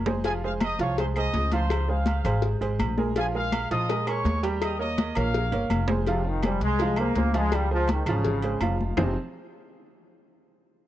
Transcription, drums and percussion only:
0.06 high conga medium
0.06 low timbale medium
0.24 cowbell loud
0.24 high conga soft
0.24 low agogo medium
0.43 high conga soft
0.60 cowbell medium
0.60 high conga loud
0.60 low agogo loud
0.60 claves medium
0.79 cowbell medium
0.79 high conga soft
0.98 cowbell loud
0.98 high conga soft
0.98 low agogo medium
1.16 high conga soft
1.16 low agogo loud
1.16 claves medium
1.34 cowbell medium
1.34 high conga medium
1.34 low timbale medium
1.52 cowbell medium
1.52 high conga medium
1.52 low agogo medium
1.70 cowbell loud
1.70 high conga soft
1.70 low agogo loud
1.70 claves medium
1.89 high conga soft
2.06 cowbell medium
2.06 high conga loud
2.06 low agogo medium
2.24 cowbell medium
2.24 high conga soft
2.24 low conga medium
2.24 low agogo loud
2.24 claves medium
2.42 cowbell loud
2.42 high conga soft
2.61 high conga soft
2.61 low agogo medium
2.79 cowbell medium
2.79 high conga medium
2.79 low agogo loud
2.79 claves medium
2.98 high conga medium
3.16 cowbell loud
3.16 low agogo medium
3.34 high conga soft
3.52 cowbell medium
3.52 high conga loud
3.52 low agogo loud
3.52 claves medium
3.71 cowbell medium
3.71 high conga soft
3.89 cowbell loud
3.89 high conga soft
3.89 low agogo medium
4.07 high conga soft
4.07 low agogo loud
4.07 claves medium
4.25 cowbell medium
4.25 high conga medium
4.25 low timbale medium
4.43 cowbell medium
4.43 low agogo medium
4.62 cowbell loud
4.62 high conga soft
4.62 low agogo loud
4.62 claves medium
4.80 high conga soft
4.98 cowbell medium
4.98 high conga loud
4.98 low agogo medium
5.15 cowbell medium
5.15 high conga soft
5.15 low conga medium
5.15 low agogo loud
5.15 claves medium
5.34 cowbell loud
5.34 high conga soft
5.52 high conga soft
5.52 high timbale medium
5.52 low agogo medium
5.70 cowbell medium
5.70 high conga loud
5.70 low agogo loud
5.70 claves medium
5.88 high conga medium
5.88 low timbale loud
6.07 cowbell loud
6.07 high conga soft
6.07 low agogo medium
6.25 high conga soft
6.43 cowbell medium
6.43 high conga loud
6.43 low agogo loud
6.43 claves medium
6.61 cowbell medium
6.61 high conga soft
6.79 cowbell loud
6.79 high conga soft
6.79 low agogo medium
6.96 high conga soft
6.96 low agogo loud
6.96 claves medium
7.15 cowbell medium
7.15 high conga medium
7.34 cowbell medium
7.34 low agogo medium
7.52 cowbell loud
7.52 high conga soft
7.52 low agogo loud
7.52 claves medium
7.71 high conga soft
7.88 cowbell medium
7.88 high conga loud
7.88 low agogo loud
8.06 cowbell medium
8.06 high conga soft
8.06 low conga medium
8.06 low agogo loud
8.06 claves medium
8.25 cowbell loud
8.25 high conga soft
8.25 low conga medium
8.42 high conga soft
8.42 low agogo medium
8.61 cowbell medium
8.61 high conga medium
8.61 low agogo loud
8.61 claves medium
8.81 high conga medium
8.97 low bongo loud
8.97 low conga loud
8.97 low timbale loud
8.97 claves loud

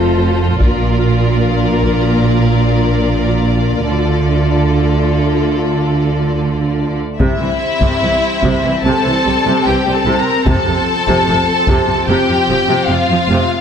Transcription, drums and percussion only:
0.61 taiko medium
1.83 taiko soft
7.20 taiko medium
7.81 taiko medium
8.42 taiko medium
10.47 taiko medium
11.07 taiko medium
11.67 taiko medium

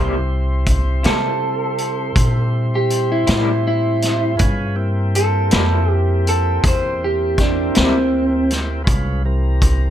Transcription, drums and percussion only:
0.66 kick medium
0.66 closed hi-hat medium
1.04 snare medium
1.04 closed hi-hat medium
1.78 closed hi-hat soft
2.16 kick loud
2.16 closed hi-hat medium
2.90 closed hi-hat soft
3.27 snare medium
3.27 closed hi-hat medium
4.02 snare soft
4.02 closed hi-hat medium
4.39 kick medium
4.39 closed hi-hat medium
5.15 closed hi-hat medium
5.51 snare medium
5.51 closed hi-hat medium
6.27 closed hi-hat medium
6.64 kick loud
6.64 closed hi-hat medium
7.38 kick medium
7.38 snare soft
7.38 closed hi-hat soft
7.75 snare loud
7.75 closed hi-hat medium
8.51 snare soft
8.51 closed hi-hat medium
8.87 kick loud
8.87 closed hi-hat medium
9.62 kick medium
9.62 closed hi-hat medium

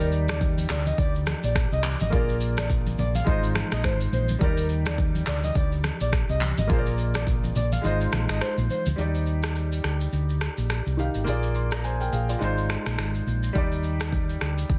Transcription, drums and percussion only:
0.00 shaker medium
0.12 shaker medium
0.29 finger snap loud
0.29 cross-stick loud
0.29 high conga medium
0.29 shaker loud
0.41 kick medium
0.41 shaker medium
0.58 high conga medium
0.58 shaker medium
0.70 finger snap medium
0.70 cross-stick loud
0.70 clap loud
0.70 low conga medium
0.70 shaker soft
0.87 high conga medium
0.87 shaker loud
0.98 kick loud
0.98 shaker medium
1.15 shaker soft
1.27 finger snap medium
1.27 cross-stick loud
1.27 high conga medium
1.27 shaker medium
1.43 shaker loud
1.55 finger snap medium
1.55 kick medium
1.55 cross-stick loud
1.55 shaker medium
1.72 shaker medium
1.84 clap loud
1.84 high conga medium
1.84 shaker medium
2.00 high conga medium
2.00 shaker medium
2.13 kick loud
2.13 low conga medium
2.13 shaker medium
2.29 shaker medium
2.41 shaker medium
2.57 finger snap loud
2.57 cross-stick loud
2.57 high conga medium
2.57 shaker loud
2.70 kick loud
2.70 shaker medium
2.87 high conga medium
2.87 shaker medium
2.98 low conga medium
2.98 shaker soft
3.15 high conga medium
3.15 shaker loud
3.27 kick loud
3.27 shaker medium
3.43 shaker soft
3.55 finger snap medium
3.55 cross-stick loud
3.55 high conga medium
3.55 shaker medium
3.72 finger snap medium
3.72 cross-stick loud
3.72 shaker loud
3.84 finger snap medium
3.84 kick medium
3.84 cross-stick medium
3.84 shaker medium
4.01 shaker medium
4.13 high conga medium
4.13 shaker medium
4.29 high conga medium
4.29 shaker medium
4.41 kick loud
4.41 low conga medium
4.41 shaker medium
4.57 shaker medium
4.69 shaker medium
4.86 finger snap medium
4.86 cross-stick loud
4.86 high conga medium
4.86 shaker loud
4.98 kick loud
4.98 shaker medium
5.15 high conga medium
5.15 shaker medium
5.27 finger snap medium
5.27 cross-stick loud
5.27 clap loud
5.27 low conga medium
5.27 shaker soft
5.44 high conga medium
5.44 shaker loud
5.55 kick loud
5.55 shaker medium
5.72 shaker soft
5.84 finger snap medium
5.84 cross-stick loud
5.84 high conga medium
5.84 shaker medium
6.01 shaker loud
6.13 finger snap medium
6.13 kick medium
6.13 cross-stick loud
6.13 shaker medium
6.29 shaker medium
6.41 clap loud
6.41 high conga medium
6.41 shaker medium
6.58 high conga medium
6.58 shaker medium
6.70 kick loud
6.70 low conga medium
6.70 shaker medium
6.86 shaker medium
6.98 shaker medium
7.15 finger snap loud
7.15 cross-stick loud
7.15 high conga medium
7.15 shaker loud
7.27 kick medium
7.27 low conga medium
7.27 shaker medium
7.44 high conga medium
7.44 shaker medium
7.56 low conga medium
7.56 shaker medium
7.72 high conga medium
7.72 shaker loud
7.84 shaker medium
8.01 shaker soft
8.12 finger snap medium
8.12 cross-stick loud
8.12 high conga medium
8.12 shaker medium
8.29 finger snap medium
8.29 cross-stick loud
8.29 shaker medium
8.41 finger snap medium
8.41 cross-stick loud
8.41 shaker medium
8.58 shaker medium
8.70 high conga medium
8.70 shaker medium
8.86 high conga medium
8.86 shaker medium
8.98 shaker medium
9.15 shaker medium
9.26 shaker medium
9.43 finger snap medium
9.43 cross-stick loud
9.43 shaker medium
9.56 shaker medium
9.72 shaker medium
9.84 finger snap medium
9.84 cross-stick medium
9.84 shaker soft
10.01 shaker medium
10.13 shaker medium
10.29 shaker soft
10.41 finger snap medium
10.41 cross-stick medium
10.41 shaker medium
10.58 shaker medium
10.70 finger snap medium
10.70 cross-stick medium
10.70 shaker medium
10.86 shaker medium
10.99 shaker soft
11.15 shaker medium
11.27 shaker medium
11.43 shaker medium
11.55 shaker medium
11.72 finger snap medium
11.72 cross-stick loud
11.72 shaker medium
11.84 shaker medium
12.01 shaker medium
12.13 shaker soft
12.29 shaker medium
12.41 shaker medium
12.58 shaker soft
12.70 finger snap medium
12.70 cross-stick medium
12.70 shaker medium
12.86 finger snap medium
12.86 cross-stick medium
12.86 shaker medium
12.98 finger snap medium
12.98 cross-stick medium
12.98 shaker medium
13.15 shaker medium
13.27 shaker soft
13.43 shaker medium
13.55 kick loud
13.55 shaker medium
13.72 shaker medium
13.83 shaker medium
14.00 finger snap medium
14.00 cross-stick loud
14.00 shaker medium
14.12 kick medium
14.12 shaker medium
14.29 shaker medium
14.41 finger snap medium
14.41 cross-stick medium
14.41 shaker soft
14.58 shaker medium
14.70 kick loud
14.70 shaker medium

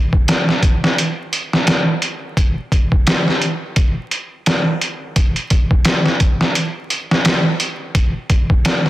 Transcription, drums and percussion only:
0.13 kick medium
0.28 snare loud
0.28 closed hi-hat medium
0.49 snare soft
0.63 kick medium
0.63 closed hi-hat medium
0.84 snare medium
0.98 closed hi-hat medium
1.33 closed hi-hat medium
1.53 snare soft
1.67 snare loud
1.67 closed hi-hat medium
2.02 closed hi-hat medium
2.37 kick loud
2.37 closed hi-hat medium
2.72 kick medium
2.72 closed hi-hat medium
2.92 kick medium
3.07 snare loud
3.07 closed hi-hat medium
3.28 snare soft
3.42 closed hi-hat medium
3.76 kick loud
3.76 closed hi-hat medium
4.11 closed hi-hat medium
4.46 snare loud
4.46 closed hi-hat medium
4.81 closed hi-hat medium
5.16 kick loud
5.16 closed hi-hat medium
5.36 closed hi-hat soft
5.50 kick medium
5.50 closed hi-hat medium
5.71 kick medium
5.85 snare loud
5.85 closed hi-hat medium
6.06 snare soft
6.20 kick medium
6.20 closed hi-hat medium
6.41 snare soft
6.55 closed hi-hat medium
6.90 closed hi-hat medium
7.11 snare soft
7.25 snare loud
7.25 closed hi-hat medium
7.60 closed hi-hat medium
7.95 kick loud
7.95 closed hi-hat medium
8.30 kick medium
8.30 closed hi-hat medium
8.50 kick loud
8.65 snare loud
8.65 closed hi-hat medium
8.86 snare soft

